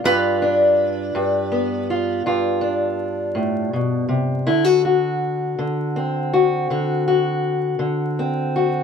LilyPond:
<<
  \new Staff \with { instrumentName = "Resonator guitar played with a steel bar" } { \time 12/8 \key g \mixolydian \tempo 4. = 54 b'2. r2. | r1. | }
  \new Staff \with { instrumentName = "Steel-string acoustic guitar" } { \time 12/8 \key g \mixolydian << { f'8 d'4. b8 f'8 f'8 d'2~ d'8 | e'16 fis'16 fis'4. c'8 fis'8 fis'8 fis'4. c'8 fis'8 | } \\ { g,4. g,4. g,4. a,8 b,8 c8 | d4. d4. d4. d4. | } >> }
>>